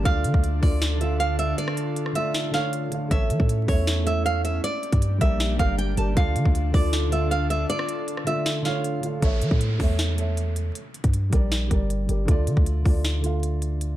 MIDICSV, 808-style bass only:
0, 0, Header, 1, 2, 480
1, 0, Start_track
1, 0, Key_signature, -1, "minor"
1, 0, Tempo, 382166
1, 67, Time_signature, 4, 2, 24, 8
1, 17541, End_track
2, 0, Start_track
2, 0, Title_t, "808-style bass"
2, 0, Program_c, 0, 38
2, 68, Note_on_c, 0, 38, 103
2, 308, Note_on_c, 0, 50, 104
2, 327, Note_off_c, 0, 38, 0
2, 421, Note_off_c, 0, 50, 0
2, 428, Note_on_c, 0, 38, 106
2, 773, Note_off_c, 0, 38, 0
2, 787, Note_on_c, 0, 38, 106
2, 1939, Note_off_c, 0, 38, 0
2, 3907, Note_on_c, 0, 33, 103
2, 4147, Note_on_c, 0, 52, 103
2, 4166, Note_off_c, 0, 33, 0
2, 4261, Note_off_c, 0, 52, 0
2, 4267, Note_on_c, 0, 45, 106
2, 4613, Note_off_c, 0, 45, 0
2, 4626, Note_on_c, 0, 40, 103
2, 5778, Note_off_c, 0, 40, 0
2, 6186, Note_on_c, 0, 43, 104
2, 6532, Note_off_c, 0, 43, 0
2, 6546, Note_on_c, 0, 34, 104
2, 7007, Note_off_c, 0, 34, 0
2, 7026, Note_on_c, 0, 31, 105
2, 7487, Note_off_c, 0, 31, 0
2, 7505, Note_on_c, 0, 31, 104
2, 7736, Note_off_c, 0, 31, 0
2, 7746, Note_on_c, 0, 38, 106
2, 7986, Note_on_c, 0, 50, 108
2, 8005, Note_off_c, 0, 38, 0
2, 8100, Note_off_c, 0, 50, 0
2, 8107, Note_on_c, 0, 38, 106
2, 8452, Note_off_c, 0, 38, 0
2, 8466, Note_on_c, 0, 38, 106
2, 9618, Note_off_c, 0, 38, 0
2, 11586, Note_on_c, 0, 33, 102
2, 11826, Note_on_c, 0, 52, 102
2, 11845, Note_off_c, 0, 33, 0
2, 11940, Note_off_c, 0, 52, 0
2, 11946, Note_on_c, 0, 45, 105
2, 12292, Note_off_c, 0, 45, 0
2, 12306, Note_on_c, 0, 40, 107
2, 13458, Note_off_c, 0, 40, 0
2, 13867, Note_on_c, 0, 43, 102
2, 14212, Note_off_c, 0, 43, 0
2, 14226, Note_on_c, 0, 34, 101
2, 14687, Note_off_c, 0, 34, 0
2, 14706, Note_on_c, 0, 31, 104
2, 15167, Note_off_c, 0, 31, 0
2, 15185, Note_on_c, 0, 31, 105
2, 15416, Note_off_c, 0, 31, 0
2, 15426, Note_on_c, 0, 38, 102
2, 15664, Note_on_c, 0, 50, 103
2, 15683, Note_off_c, 0, 38, 0
2, 15779, Note_off_c, 0, 50, 0
2, 15787, Note_on_c, 0, 38, 108
2, 16132, Note_off_c, 0, 38, 0
2, 16146, Note_on_c, 0, 38, 103
2, 17536, Note_off_c, 0, 38, 0
2, 17541, End_track
0, 0, End_of_file